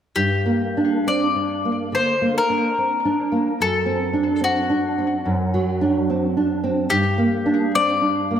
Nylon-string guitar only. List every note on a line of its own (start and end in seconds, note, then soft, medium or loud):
0.16 1.90 G2 soft
0.46 0.95 A#3 soft
0.77 1.25 D4 soft
1.07 1.37 C4 soft
1.36 1.82 D4 soft
1.65 2.11 A#3 soft
1.92 2.38 D3 soft
2.21 2.67 A#3 soft
2.50 2.95 D4 soft
2.78 3.06 C4 soft
3.05 3.50 D4 soft
3.32 3.60 A#3 soft
3.60 5.22 F#2 soft
3.86 4.31 C4 soft
4.13 4.58 D4 soft
4.41 4.70 C4 soft
4.70 5.15 D4 soft
4.98 5.43 C4 soft
5.25 6.86 F#2 soft
5.54 5.98 F#3 soft
5.81 6.25 D4 soft
6.10 6.36 C4 soft
6.37 6.80 D4 soft
6.64 6.91 C4 soft
6.91 8.40 G2 soft
7.18 7.64 A#3 soft
7.46 7.91 D4 soft
7.75 8.02 C4 soft
8.02 8.40 D4 soft
8.31 8.40 A#3 soft